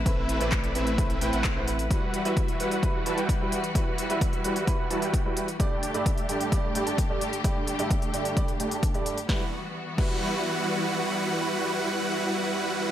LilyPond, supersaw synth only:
\new Staff \with { instrumentName = "Supersaw synth" } { \time 4/4 \key e \minor \tempo 4 = 130 <a c' e' b' e''>8. <a c' e' b' d''>8. <a c' e' b' e''>8. <a c' e' b' e''>16 <a c' e' b' g''>16 <a c' e' b' fis''>8 <a c' e' b' fis''>16 r8 | <g e' fis' b' fis''>8. <g e' fis' b' e''>8. <g e' fis' b' fis''>8. <g e' fis' b' fis''>16 <g e' fis' b' a''>16 <g e' fis' b' g''>8 <g e' fis' b' g''>16 r8 | <g e' fis' b' fis''>8. <g e' fis' b' e''>8. <g e' fis' b' fis''>8. <g e' fis' b' fis''>16 <g e' fis' b' a''>16 <g e' fis' b' g''>8 <g e' fis' b' g''>16 r8 | <a d' g' d'' g''>8. <a d' g' d'' e''>8. <a d' g' d'' g''>8. <a d' g' d'' g''>16 <a d' g' d'' g''>16 <a d' g' d'' a''>8 <a d' g' d'' a''>16 r8 |
<a d' g' d'' g''>8. <a d' g' d'' e''>8. <a d' g' d'' g''>8. <a d' g' d'' g''>16 <a d' g' d'' g''>16 <a d' g' d'' a''>8 <a d' g' d'' a''>16 r8 | <g e' fis' b' fis''>16 r4 r16 <g e' fis' b' fis''>2~ <g e' fis' b' fis''>8~ | <g e' fis' b' fis''>1 | }